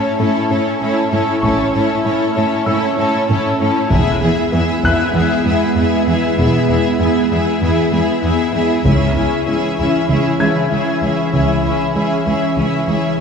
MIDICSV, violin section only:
0, 0, Header, 1, 2, 480
1, 0, Start_track
1, 0, Tempo, 618557
1, 1114, Time_signature, 4, 2, 24, 8
1, 10246, End_track
2, 0, Start_track
2, 0, Title_t, "Violin section"
2, 0, Program_c, 0, 48
2, 0, Note_on_c, 0, 69, 40
2, 0, Note_on_c, 0, 73, 45
2, 138, Note_off_c, 0, 69, 0
2, 139, Note_off_c, 0, 73, 0
2, 148, Note_on_c, 0, 69, 44
2, 148, Note_on_c, 0, 73, 41
2, 379, Note_off_c, 0, 73, 0
2, 382, Note_off_c, 0, 69, 0
2, 389, Note_on_c, 0, 73, 41
2, 391, Note_on_c, 0, 69, 40
2, 622, Note_off_c, 0, 69, 0
2, 622, Note_off_c, 0, 73, 0
2, 631, Note_on_c, 0, 69, 43
2, 632, Note_on_c, 0, 73, 43
2, 855, Note_off_c, 0, 73, 0
2, 857, Note_off_c, 0, 69, 0
2, 865, Note_on_c, 0, 73, 40
2, 866, Note_on_c, 0, 69, 44
2, 1096, Note_off_c, 0, 73, 0
2, 1097, Note_off_c, 0, 69, 0
2, 1106, Note_on_c, 0, 73, 53
2, 1107, Note_on_c, 0, 69, 46
2, 1334, Note_off_c, 0, 69, 0
2, 1336, Note_off_c, 0, 73, 0
2, 1343, Note_on_c, 0, 69, 45
2, 1345, Note_on_c, 0, 73, 47
2, 1575, Note_off_c, 0, 69, 0
2, 1576, Note_off_c, 0, 73, 0
2, 1584, Note_on_c, 0, 69, 42
2, 1586, Note_on_c, 0, 73, 48
2, 1814, Note_off_c, 0, 73, 0
2, 1815, Note_off_c, 0, 69, 0
2, 1823, Note_on_c, 0, 73, 43
2, 1824, Note_on_c, 0, 69, 45
2, 2054, Note_off_c, 0, 69, 0
2, 2054, Note_off_c, 0, 73, 0
2, 2064, Note_on_c, 0, 69, 42
2, 2064, Note_on_c, 0, 73, 51
2, 2295, Note_off_c, 0, 73, 0
2, 2297, Note_off_c, 0, 69, 0
2, 2304, Note_on_c, 0, 73, 48
2, 2307, Note_on_c, 0, 69, 49
2, 2536, Note_off_c, 0, 69, 0
2, 2537, Note_off_c, 0, 73, 0
2, 2545, Note_on_c, 0, 69, 45
2, 2547, Note_on_c, 0, 73, 42
2, 2779, Note_off_c, 0, 73, 0
2, 2781, Note_off_c, 0, 69, 0
2, 2788, Note_on_c, 0, 73, 42
2, 2790, Note_on_c, 0, 69, 41
2, 3026, Note_off_c, 0, 73, 0
2, 3027, Note_off_c, 0, 69, 0
2, 3032, Note_on_c, 0, 76, 52
2, 3033, Note_on_c, 0, 68, 57
2, 3263, Note_off_c, 0, 76, 0
2, 3266, Note_off_c, 0, 68, 0
2, 3272, Note_on_c, 0, 76, 49
2, 3275, Note_on_c, 0, 68, 43
2, 3499, Note_off_c, 0, 76, 0
2, 3501, Note_off_c, 0, 68, 0
2, 3508, Note_on_c, 0, 76, 50
2, 3510, Note_on_c, 0, 68, 43
2, 3743, Note_off_c, 0, 76, 0
2, 3745, Note_off_c, 0, 68, 0
2, 3753, Note_on_c, 0, 76, 48
2, 3754, Note_on_c, 0, 68, 45
2, 3989, Note_off_c, 0, 68, 0
2, 3989, Note_off_c, 0, 76, 0
2, 4000, Note_on_c, 0, 68, 49
2, 4002, Note_on_c, 0, 76, 46
2, 4232, Note_off_c, 0, 68, 0
2, 4233, Note_off_c, 0, 76, 0
2, 4241, Note_on_c, 0, 68, 45
2, 4242, Note_on_c, 0, 76, 48
2, 4462, Note_off_c, 0, 76, 0
2, 4466, Note_off_c, 0, 68, 0
2, 4472, Note_on_c, 0, 76, 47
2, 4475, Note_on_c, 0, 68, 48
2, 4708, Note_off_c, 0, 76, 0
2, 4710, Note_off_c, 0, 68, 0
2, 4719, Note_on_c, 0, 68, 44
2, 4719, Note_on_c, 0, 76, 44
2, 4941, Note_off_c, 0, 68, 0
2, 4942, Note_off_c, 0, 76, 0
2, 4950, Note_on_c, 0, 68, 49
2, 4951, Note_on_c, 0, 76, 52
2, 5183, Note_off_c, 0, 76, 0
2, 5187, Note_off_c, 0, 68, 0
2, 5192, Note_on_c, 0, 76, 45
2, 5195, Note_on_c, 0, 68, 45
2, 5415, Note_off_c, 0, 68, 0
2, 5416, Note_off_c, 0, 76, 0
2, 5425, Note_on_c, 0, 68, 41
2, 5425, Note_on_c, 0, 76, 43
2, 5660, Note_off_c, 0, 68, 0
2, 5661, Note_off_c, 0, 76, 0
2, 5669, Note_on_c, 0, 68, 46
2, 5671, Note_on_c, 0, 76, 40
2, 5904, Note_off_c, 0, 68, 0
2, 5905, Note_off_c, 0, 76, 0
2, 5913, Note_on_c, 0, 68, 48
2, 5914, Note_on_c, 0, 76, 43
2, 6136, Note_off_c, 0, 68, 0
2, 6138, Note_off_c, 0, 76, 0
2, 6145, Note_on_c, 0, 68, 41
2, 6147, Note_on_c, 0, 76, 40
2, 6377, Note_off_c, 0, 68, 0
2, 6381, Note_off_c, 0, 76, 0
2, 6386, Note_on_c, 0, 68, 44
2, 6390, Note_on_c, 0, 76, 48
2, 6619, Note_off_c, 0, 68, 0
2, 6620, Note_off_c, 0, 76, 0
2, 6628, Note_on_c, 0, 68, 41
2, 6629, Note_on_c, 0, 76, 42
2, 6856, Note_off_c, 0, 76, 0
2, 6860, Note_off_c, 0, 68, 0
2, 6865, Note_on_c, 0, 76, 48
2, 6869, Note_on_c, 0, 68, 40
2, 7095, Note_off_c, 0, 68, 0
2, 7098, Note_off_c, 0, 76, 0
2, 7104, Note_on_c, 0, 68, 37
2, 7107, Note_on_c, 0, 76, 40
2, 7333, Note_off_c, 0, 68, 0
2, 7334, Note_off_c, 0, 76, 0
2, 7342, Note_on_c, 0, 68, 41
2, 7344, Note_on_c, 0, 76, 41
2, 7578, Note_off_c, 0, 76, 0
2, 7580, Note_off_c, 0, 68, 0
2, 7587, Note_on_c, 0, 76, 41
2, 7590, Note_on_c, 0, 68, 36
2, 7818, Note_off_c, 0, 76, 0
2, 7820, Note_off_c, 0, 68, 0
2, 7827, Note_on_c, 0, 76, 37
2, 7829, Note_on_c, 0, 68, 37
2, 8054, Note_off_c, 0, 76, 0
2, 8056, Note_off_c, 0, 68, 0
2, 8064, Note_on_c, 0, 76, 33
2, 8065, Note_on_c, 0, 68, 32
2, 8304, Note_off_c, 0, 76, 0
2, 8305, Note_off_c, 0, 68, 0
2, 8313, Note_on_c, 0, 76, 33
2, 8314, Note_on_c, 0, 68, 35
2, 8544, Note_off_c, 0, 68, 0
2, 8545, Note_off_c, 0, 76, 0
2, 8554, Note_on_c, 0, 68, 31
2, 8554, Note_on_c, 0, 76, 30
2, 8787, Note_off_c, 0, 76, 0
2, 8789, Note_off_c, 0, 68, 0
2, 8797, Note_on_c, 0, 68, 32
2, 8797, Note_on_c, 0, 76, 37
2, 9026, Note_off_c, 0, 68, 0
2, 9027, Note_off_c, 0, 76, 0
2, 9035, Note_on_c, 0, 68, 34
2, 9036, Note_on_c, 0, 76, 31
2, 9263, Note_off_c, 0, 68, 0
2, 9263, Note_off_c, 0, 76, 0
2, 9272, Note_on_c, 0, 68, 33
2, 9272, Note_on_c, 0, 76, 31
2, 9503, Note_off_c, 0, 76, 0
2, 9505, Note_off_c, 0, 68, 0
2, 9513, Note_on_c, 0, 76, 32
2, 9514, Note_on_c, 0, 68, 31
2, 9746, Note_off_c, 0, 68, 0
2, 9749, Note_off_c, 0, 76, 0
2, 9755, Note_on_c, 0, 68, 33
2, 9757, Note_on_c, 0, 76, 34
2, 9990, Note_off_c, 0, 68, 0
2, 9991, Note_off_c, 0, 76, 0
2, 10000, Note_on_c, 0, 68, 30
2, 10001, Note_on_c, 0, 76, 31
2, 10232, Note_off_c, 0, 68, 0
2, 10233, Note_off_c, 0, 76, 0
2, 10246, End_track
0, 0, End_of_file